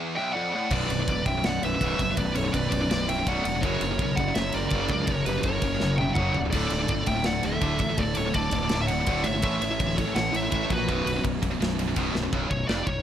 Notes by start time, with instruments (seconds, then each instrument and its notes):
Already playing: distorted electric guitar E2
0.16 distorted electric guitar B1, lead electric guitar E5 G5
0.33 distorted electric guitar F2, lead electric guitar D5 F#5
0.53 distorted electric guitar A2, lead electric guitar D5 F#5
0.71 fingered electric bass B0, distorted electric guitar B1 F#2 B2, lead electric guitar B4 D5, kick, crash
0.90 fingered electric bass B0, distorted electric guitar B1 F#2, ride
0.99 distorted electric guitar B1 F#2
1.08 fingered electric bass E1, distorted electric guitar B1 F#2, kick, ride
1.26 fingered electric bass B0, distorted electric guitar B1 F#2, lead electric guitar E5 G5, kick, ride
1.37 distorted electric guitar B1 F#2
1.44 fingered electric bass B0, distorted electric guitar B1 F#2 B2, lead electric guitar D5 F#5, snare, ride
1.63 fingered electric bass B0, distorted electric guitar B1 F#2, lead electric guitar B4 E5, ride
1.74 distorted electric guitar B1 F#2
1.81 fingered electric bass B0, distorted electric guitar B1 F#2 B2, kick, ride
1.99 fingered electric bass F#1, distorted electric guitar B1 F#2, kick, ride
2.10 distorted electric guitar B1 F#2
2.17 fingered electric bass B0, distorted electric guitar B1 F#2 B2, lead electric guitar B4 D5, kick, ride
2.35 fingered electric bass B0, distorted electric guitar B1 F#2, lead electric guitar A4 C#5, ride
2.44 distorted electric guitar B1 F#2
2.53 fingered electric bass B0, distorted electric guitar B1 F#2, lead electric guitar B4 D5, kick, ride
2.71 fingered electric bass B0, distorted electric guitar B1 F#2, kick, ride
2.81 distorted electric guitar B1 F#2
2.90 fingered electric bass B0, distorted electric guitar B1 F#2 B2, snare, ride
3.09 distorted electric guitar B1 F#2, lead electric guitar E5 G5, ride
3.18 distorted electric guitar B1 F#2
3.27 fingered electric bass B0, distorted electric guitar B1 F#2 B2, lead electric guitar D5 F#5, kick, ride
3.44 fingered electric bass E1, distorted electric guitar B1 F#2, lead electric guitar D5 F#5, ride
3.55 distorted electric guitar B1 F#2
3.61 fingered electric bass F#1, distorted electric guitar F#2 C#3, lead electric guitar A#4 C#5, kick, ride
3.65 distorted electric guitar F#3
3.81 fingered electric bass F#1, distorted electric guitar F#2 C#3, ride
3.91 distorted electric guitar F#2 C#3
3.99 fingered electric bass B1, distorted electric guitar F#2 C#3, kick, ride
4.16 fingered electric bass F#1, distorted electric guitar C#3, lead electric guitar F#5, kick, ride
4.20 distorted electric guitar F#2, lead electric guitar D5
4.28 distorted electric guitar F#2 C#3
4.34 fingered electric bass F#1, distorted electric guitar F#2 C#3, lead electric guitar C#5 E5, snare, ride
4.39 distorted electric guitar F#3
4.52 fingered electric bass F#1, distorted electric guitar F#2 C#3, lead electric guitar A#4 D5, ride
4.64 distorted electric guitar F#2 C#3
4.70 fingered electric bass F#1, distorted electric guitar F#2 C#3, kick, ride
4.74 distorted electric guitar F#3
4.88 fingered electric bass C#2, distorted electric guitar F#2 C#3, kick, ride
5.01 distorted electric guitar F#2 C#3
5.07 fingered electric bass F#1, distorted electric guitar F#2 C#3, lead electric guitar A#4 C#5, kick, ride
5.11 distorted electric guitar F#3
5.25 fingered electric bass F#1, distorted electric guitar F#2 C#3, lead electric guitar G4 B4, ride
5.38 distorted electric guitar F#2 C#3
5.43 fingered electric bass F#1, lead electric guitar A#4 C#5, kick, ride
5.48 distorted electric guitar F#2 C#3
5.62 fingered electric bass F#1, distorted electric guitar F#2 C#3, kick, ride
5.74 distorted electric guitar F#2 C#3
5.80 fingered electric bass F#1, distorted electric guitar F#2 C#3, snare
5.84 distorted electric guitar F#3
5.98 distorted electric guitar F#2 C#3, lead electric guitar E5 G5, high tom
6.09 distorted electric guitar F#2 C#3
6.14 fingered electric bass F#1, distorted electric guitar F#2 C#3 F#3, lead electric guitar C#5 F#5, kick, mid tom
6.33 fingered electric bass C#1, distorted electric guitar F#2 C#3, lead electric guitar F#5, floor tom
6.38 lead electric guitar D5
6.45 distorted electric guitar F#2 C#3
6.51 fingered electric bass D1, distorted electric guitar D2 A2 D3, lead electric guitar D5, kick, splash, crash
6.55 lead electric guitar A4
6.70 fingered electric bass D1, distorted electric guitar D2 A2, ride
6.79 distorted electric guitar D2 A2
6.88 fingered electric bass G1, distorted electric guitar D2 A2, kick, ride
7.06 fingered electric bass D1, distorted electric guitar D2 A2, lead electric guitar E5 G5, kick, ride
7.15 distorted electric guitar D2 A2
7.24 fingered electric bass D1, distorted electric guitar D2 A2, lead electric guitar D5 F#5, snare, ride
7.28 distorted electric guitar D3
7.43 fingered electric bass D1, distorted electric guitar D2 A2, lead electric guitar A4 E5, ride
7.52 distorted electric guitar D2 A2
7.61 fingered electric bass D1, distorted electric guitar D2 A2 D3, kick, ride
7.79 fingered electric bass A1, distorted electric guitar D2 A2, kick, ride
7.89 distorted electric guitar D2 A2
7.97 fingered electric bass D1, distorted electric guitar D2 A2 D3, lead electric guitar A4 D5, kick, ride
8.15 fingered electric bass D1, distorted electric guitar D2 A2, lead electric guitar A4 C#5, ride
8.26 distorted electric guitar D2 A2
8.34 fingered electric bass D1, distorted electric guitar D2 A2, lead electric guitar A4 D5, kick, ride
8.51 fingered electric bass D1, distorted electric guitar D2 A2, kick, ride
8.62 distorted electric guitar D2 A2
8.69 fingered electric bass D1, distorted electric guitar D2 A2, snare, ride
8.74 distorted electric guitar D3
8.82 lead electric guitar C#5 E5
8.87 distorted electric guitar D2 A2, lead electric guitar F#5, ride
8.93 lead electric guitar D5
9.00 distorted electric guitar D2 A2
9.06 fingered electric bass D1, distorted electric guitar D2 A2 D3, kick, ride
9.24 fingered electric bass G#1, distorted electric guitar D2 A2, lead electric guitar C#5 E5, ride
9.34 distorted electric guitar D2 A2
9.42 fingered electric bass A1, distorted electric guitar A2 E3 A3, lead electric guitar C#5 E5, kick, ride
9.62 fingered electric bass A1, distorted electric guitar A2 E3, ride
9.70 distorted electric guitar A2 E3
9.79 fingered electric bass D1, distorted electric guitar A2 E3, kick, ride
9.98 fingered electric bass A1, distorted electric guitar A2 E3, lead electric guitar A4 C#5, kick, ride
10.06 distorted electric guitar A2 E3
10.15 fingered electric bass A1, distorted electric guitar A2 E3, lead electric guitar C#5 F#5, snare, ride
10.20 distorted electric guitar A3
10.33 fingered electric bass A1, distorted electric guitar A2 E3, lead electric guitar C#5 E5, ride
10.43 distorted electric guitar A2 E3
10.51 fingered electric bass A1, distorted electric guitar A2 E3 A3, kick, ride
10.69 fingered electric bass A#1, distorted electric guitar A2 E3, lead electric guitar F#4 B4, kick, ride
10.78 distorted electric guitar A2 E3
10.88 fingered electric bass B0, distorted electric guitar B1 F#2 B2, kick, ride
11.06 fingered electric bass B0, distorted electric guitar B1 F#2, ride
11.16 distorted electric guitar B1 F#2
11.23 fingered electric bass B0, distorted electric guitar B1 F#2, kick, ride
11.42 fingered electric bass B0, distorted electric guitar B1 F#2, kick, ride
11.51 distorted electric guitar B1 F#2
11.61 fingered electric bass B0, distorted electric guitar B1 F#2 B2, snare, ride
11.79 distorted electric guitar B1 F#2, ride
11.88 distorted electric guitar B1 F#2
11.96 fingered electric bass B0, distorted electric guitar B1 F#2 B2, kick, ride
12.15 fingered electric bass B0, distorted electric guitar B1 F#2, snare
12.23 distorted electric guitar B1 F#2
12.33 fingered electric bass B0, distorted electric guitar B1, kick, china
12.50 fingered electric bass B0, distorted electric guitar B1, lead electric guitar C#5, kick
12.68 fingered electric bass F1, distorted electric guitar F2, lead electric guitar D5, snare, china
12.87 fingered electric bass B0, distorted electric guitar B1, lead electric guitar C#5, kick